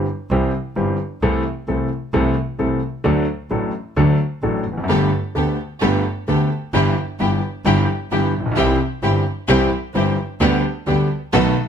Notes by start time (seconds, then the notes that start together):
0.30 C2 C3 E3 G3 C4 G4
0.76 G1 G2 E3 G3 C4 G4
1.22 C2 C3 E3 A3 C4 A4
1.68 C2 C3 E3 A3 C4 A4
2.13 C2 C3 E3 A3 C4 A4
2.59 C2 C3 E3 A3 C4 A4
3.04 D2 D3 F#3 A3 D4 A4
3.51 A1 A2 F#3 A3 D4 A4
3.97 D2 D3 F#3 A3 D4 A4
4.43 A1 A2 F#3 A3 D4 A4
4.66 F1
4.72 E2
4.78 F2
4.84 F#2
4.89 G1 G2 D3 A3 B3 G4 A4
5.35 D2 D3 A3 B3 G4 A4
5.81 G1 G2 D3 A3 B3 G4 A4
6.28 D2 D3 A3 B3 G4 A4
6.73 G1 G2 E3 G3 B3 E4 G4
7.19 G1 G2 E3 G3 B3 E4 G4
7.65 G1 G2 E3 G3 B3 E4 G4
8.11 G1 G2 E3 G3 B3 E4 G4
8.34 A#1
8.40 A1
8.46 A#1
8.52 B1
8.56 C2 C3 E3 G3 C4 E4 G4
9.02 G1 G2 E3 G3 C4 E4 G4
9.48 C2 C3 E3 G3 C4 E4 G4
9.95 G1 G2 E3 G3 C4 E4 G4
10.40 D2 D3 G3 B3 D4 G4
10.86 D2 D3 G3 B3 D4 G4
11.33 B1 B2 D#3 A3 B3 D#4 F#4 A4